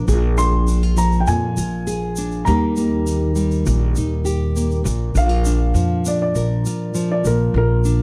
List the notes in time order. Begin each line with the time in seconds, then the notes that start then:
Already playing: F3
0.08 A#1 A#2 G#4, shaker
0.38 D4 C6, shaker
0.68 D4, shaker
0.83 F4
0.96 F3 A#5, shaker
1.12 shaker
1.20 G5
1.27 F2 A#2 G#5, shaker
1.57 A#1 F4, shaker
1.87 G#4, shaker
2.16 D4, shaker
2.32 shaker
2.45 D#2 D#3 G3 A#3 D#4 A#5, shaker
2.49 G4
2.76 A#3, shaker
3.06 D#4, shaker
3.35 G3, shaker
3.51 shaker
3.66 A#1 A#2, shaker
3.96 D#2 D#4, shaker
4.25 G4, shaker
4.56 A#3, shaker
4.71 shaker
4.84 A#1 A#2, shaker
5.15 A#1 D4 F5, shaker
5.29 F4
5.45 D4, shaker
5.74 F2 F3, shaker
6.05 D4 D5, shaker
6.22 D5
6.35 A#1 A#4, shaker
6.66 F4, shaker
6.94 F3, shaker
7.12 D5
7.24 A#1 A#2 A#4, shaker
7.54 A#1 F4 A#4
7.85 D4, shaker